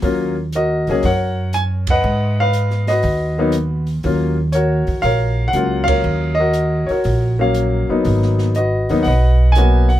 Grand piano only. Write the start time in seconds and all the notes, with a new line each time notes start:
0.02 F#3 A#3 C#4 F4
0.55 F#4 A#4 D#5
0.89 F#3 A#3 C#4 G#4
1.05 A#4 C#5 F#5
1.54 G#5
1.90 B4 D#5 F#5
2.40 B4 F5
2.88 F#4 B4 D#5
3.38 F#3 A#3 B3 D#4
4.04 F#3 A#3 C#4 F4
4.52 F#4 A#4 C#5
5.02 A#4 C#5 F5
5.48 F#5
5.54 F#3 A#3 C#4 F4
5.84 F5
5.88 A#4 C#5
6.35 D#5
6.40 F#4 A#4
6.87 C#5
6.91 F#4 A#4
7.39 F#3 A#3 C#4 F5
7.89 F#3 A#3 B3 D#4
8.56 F#4 B4 D#5
8.89 F#3 A#3 B3 D#4
9.03 F#5
9.08 B4 D#5
9.52 G#5
9.56 F#3 A#3 B3 F#4
9.89 F#5